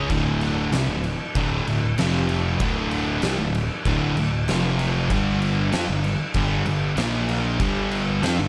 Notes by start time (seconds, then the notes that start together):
Already playing: C#4
0.10 D1 D2 A2 D3, kick, crash
0.41 crash
0.72 C2 C3 G3, snare, crash
0.88 D1 D2 A2
1.04 crash
1.35 D1 D2 A2 D3, kick, crash
1.65 D1 D2 A2, crash
1.97 F1 F2 C3 F3, snare, crash
2.29 crash
2.60 D1 D2 A2 D3, kick, crash
2.91 crash
3.22 C2 C3 G3, snare, crash
3.39 D1 D2 A2
3.55 crash
3.85 D1 D2 A2 D3, kick, crash
4.16 D1 D2 A2, crash
4.48 F1 F2 C3 F3, snare, crash
4.79 crash
5.10 G1 G2 D3 G3, kick, crash
5.42 crash
5.72 F2 F3 C4, snare, crash
5.88 G1 G2 D3
6.04 crash
6.34 G1 G2 D3 G3, kick, crash
6.65 G1 G2 D3, crash
6.97 A#1 A#2 F3 A#3, snare, crash
7.29 crash
7.60 G1 G2 D3 G3, kick, crash
7.91 crash
8.22 F2 F3 C4, snare, crash
8.38 G1 G2 D3